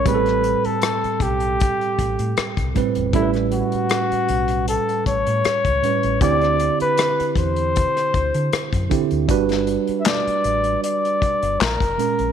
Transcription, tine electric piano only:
X:1
M:4/4
L:1/8
Q:"Swing 16ths" 1/4=78
K:Ador
V:1 name="Tine electric piano"
[A,,G,C_A=A]3 z4 [A,,G,CB] | [A,,G,^CAB]3 z4 [A,,G,CB] | [D,CEG]3 z4 [D,CEG] | [G,DFB]3 z4 [_B,,_A,_D_B] |]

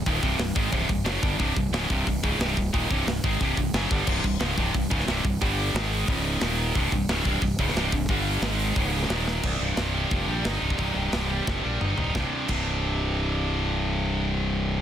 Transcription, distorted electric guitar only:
X:1
M:4/4
L:1/8
Q:1/4=179
K:Cphr
V:1 name="Distorted electric guitar" clef=bass
[E,,B,,E,] [C,,G,,C,] [C,,G,,] [A,,E,A,] [C,,G,,C,] [C,,G,,] [^F,,D,^F,] [G,,=D,G,] | [C,,G,,C,] [C,,G,,] [D,,A,,D,] [C,,G,,C,] [C,,G,,] [D,,A,,D,] [C,,G,,C,] [C,,G,,] | [E,,B,,E,] [C,,G,,C,] [C,,G,,] [A,,E,A,] [C,,G,,C,] [C,,G,,] [^F,,D,^F,] [G,,=D,G,] | [C,,G,,C,] [C,,G,,] [D,,A,,D,] [C,,G,,C,] [C,,G,,] [D,,A,,D,] [C,,G,,C,] [C,,G,,] |
[G,,=D,G,]2 [A,,E,A,]2 [_D,,A,,_D,]2 [E,,B,,E,]2 | [C,,G,,C,] [C,,G,,] [D,,A,,D,] [C,,G,,C,] [C,,G,,] [D,,A,,D,] [C,,G,,C,] [C,,G,,] | [G,,=D,G,]2 [A,,E,A,]2 [_D,,A,,_D,]2 [E,,B,,E,]2 | C,, G,, C, G, G,, G, E C, |
C,, G,, C, G, G,, G, E C, | [C,,G,,C,] z [C,,G,,C,]6- | [C,,G,,C,]8 |]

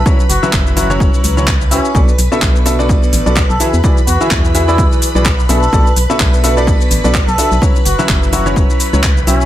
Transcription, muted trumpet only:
X:1
M:4/4
L:1/16
Q:"Swing 16ths" 1/4=127
K:Bdor
V:1 name="Muted trumpet"
z2 F2 z2 F2 z6 C2 | z12 z A z2 | z2 F2 z3 E2 z4 z A2- | A2 z8 z3 A3 |
z2 F2 z2 F2 z6 C2 |]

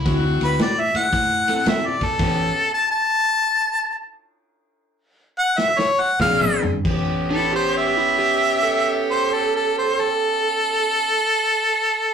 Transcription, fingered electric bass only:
X:1
M:4/4
L:1/8
Q:"Swing" 1/4=98
K:Amix
V:1 name="Fingered electric bass" clef=bass
D,, D,, A,, A,, A,,2 B,, B,, | A,,, z6 z | z6 _B,,, G,, | A,,,8- |
A,,,8 |]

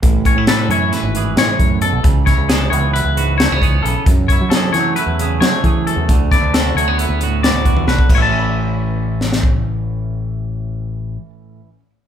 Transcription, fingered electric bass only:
X:1
M:9/8
L:1/16
Q:3/8=89
K:A
V:1 name="Fingered electric bass" clef=bass
A,,,3 A,,3 F,,2 z G,,,3 A,, z F,,3 B,,, | C,,3 C,,3 C,,3 C,,4 C,,3 B,,, z | F,,3 F,3 E,2 z E,,3 F, z E,3 E,, | D,,3 D,,3 D,,3 D,,4 D,,3 B,,, z |
A,,,16- A,,,2- | A,,,16- A,,,2 |]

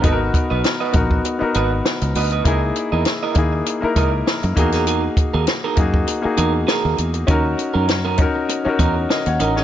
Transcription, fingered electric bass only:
X:1
M:4/4
L:1/16
Q:"Swing 16ths" 1/4=99
K:C#dor
V:1 name="Fingered electric bass" clef=bass
G,,,2 z B,,, z2 A,,,2 z2 G,,,2 z C,, =D,,2 | C,,2 z E,, z2 D,,2 z2 C,,2 z F,, E,,2- | E,,2 z D,, z2 F,,2 z2 E,,2 z D,, E,,2 | D,,2 z F,,4 z3 E,,2 z D,, =A,,,2 |]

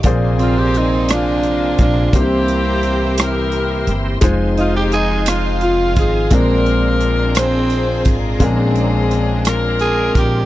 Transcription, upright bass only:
X:1
M:6/8
L:1/8
Q:3/8=57
K:Bbmix
V:1 name="Upright bass" clef=bass
B,,,4- B,,, B,,, | C,,4- C,, G,,, | F,,,4- F,,, A,,, | B,,,4- B,,, A,,, |
B,,,4- B,,, B,,, |]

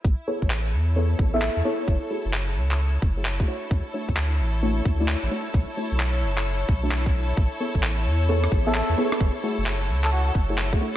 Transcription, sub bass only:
X:1
M:4/4
L:1/16
Q:"Swing 16ths" 1/4=131
K:A
V:1 name="Sub bass" clef=bass
A,,, z2 A,,,3 E,,4 A,,,3 E,, z2 | F,,, z2 F,,,3 C,,4 F,,,4 z2 | D,, z2 D,,3 A,,,4 D,,3 A,,, z2 | B,,, z2 B,,,3 F,,,4 B,,,6 |
A,,, z2 A,,,3 E,,4 A,,,3 E,, z2 | F,,, z2 F,,,3 C,,4 F,,,4 z2 |]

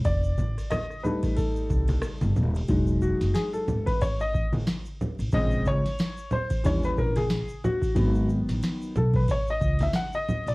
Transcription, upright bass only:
X:1
M:4/4
L:1/16
Q:"Swing 16ths" 1/4=91
K:E
V:1 name="Upright bass" clef=bass
=F,,,2 A,,, z6 z =C,,2 z =G,,, _E,,,2 | E,,,3 F,,, z2 G,,,4- G,,, A,,, z3 A,,, | ^A,,,2 C,, z4 z D,,2 A,,,3 z3 | G,,,3 A,,, z2 B,,,2 z2 C,,2 z3 ^A,,, |]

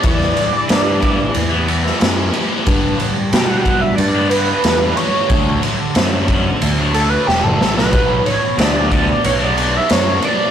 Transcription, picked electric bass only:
X:1
M:4/4
L:1/16
Q:1/4=91
K:Edor
V:1 name="Picked electric bass" clef=bass
E,,2 z2 G,,4 E,,4 F,,2 z2 | G,,2 z2 B,,4 G,,4 E,,2 z2 | D,,2 z2 F,,4 D,,4 E,,, F,,, A,,, B,,, | B,,,2 z2 D,,4 B,,,4 F,,2 z2 |]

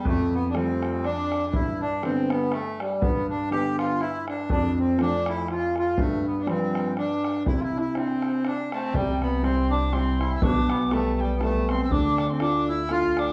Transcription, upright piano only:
X:1
M:3/4
L:1/8
Q:"Swing" 1/4=121
K:C
V:1 name="Upright piano"
F,,2 [F,G,A,]2 z2 | G,,2 [D,G,B,]2 z2 | G,,2 [D,G,B,]2 z2 | F,,2 [F,A,C]2 z2 |
G,,2 [F,G,B]2 z2 | C,2 [CDE]2 z2 | C,2 [G,CE]2 [G,CE]2 | B,,2 [G,A,B,]2 [G,A,B,]2 |
D,2 [A,DF]2 [A,DF]2 |]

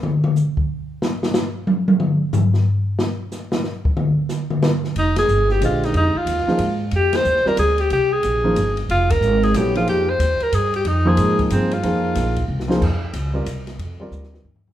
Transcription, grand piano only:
X:1
M:3/4
L:1/8
Q:"Swing" 1/4=183
K:Fdor
V:1 name="Grand piano"
z6 | z6 | z6 | z6 |
z6 | z4 [D,A,Gce]2- | [D,A,Gce] z2 [F,B,EAc] z2 | z3 [G,CFBd] z2 |
z3 [F,B,EAc] z2 | z4 [_G,=B,=E=A_d] [F,_B,_E_Ac]- | [F,B,EAc] z4 z | z [F,B,EAc]3 [F,B,EAc] z |
[F,B,EAc]3 z2 [F,B,EAc] | z3 [G,CFBd] z2 | z [G,CFBd]3 z2 |]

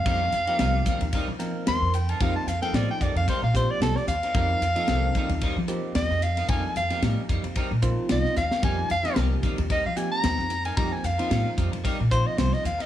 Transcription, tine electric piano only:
X:1
M:4/4
L:1/16
Q:"Swing 16ths" 1/4=112
K:Fmix
V:1 name="Tine electric piano"
[F,B,CEG]2 z [F,B,CEG]4- [F,B,CEG] z2 [F,B,CEB]4 z2 | [F,B,CEG]2 z [F,B,CEA]4- [F,B,CEA] z2 [F,B,CEG]4 z2 | [F,B,CEB]2 z [F,B,CEA]4- [F,B,CEA] z2 [F,B,CEG]4 z2 | [F,B,CEA]2 z [F,B,CEG]4- [F,B,CEG] z2 [F,B,CEF]4 z2 |
[F,B,CEG]2 z [F,B,CEG]4- [F,B,CEG] z2 [F,B,CEG]4 z2 | [F,B,CEG]2 z [F,B,CEF]4- [F,B,CEF] z2 [F,B,CEF]4 z2 |]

